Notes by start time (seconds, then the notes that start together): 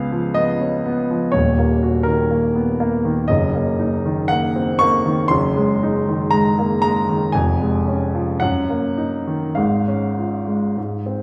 Already playing: C#2 B3 G#4 F5
0.12 F3
0.34 B3 D#5
0.61 C#4
0.86 B3
1.10 F3
1.32 D#1 D#2 C#5
1.59 A#3
1.83 F#4
2.03 D#3 A#4
2.31 A#3
2.55 B3
2.80 A#3
3.05 D#3
3.28 F#1 F#2 D#5
3.55 A#3
3.79 D#4
4.06 D#3
4.28 A#3 F#5
4.56 C4
4.79 A#3 C#6
5.06 D#3
5.28 F#1 F#2 C6
5.57 G#3
5.83 D#4
6.08 D#3
6.31 G#3 A#5
6.59 A#3
6.82 G#3 A#5
7.09 D#3
7.32 F1 F2 G#5
7.61 G#3
7.88 C#4
8.15 F3
8.40 F#2 F#5
8.70 A#3
8.98 D#4
9.27 D#3
9.55 G#1 G#2 F5
9.88 C#4
10.18 F4
10.47 G#3
10.77 G#2
11.06 C4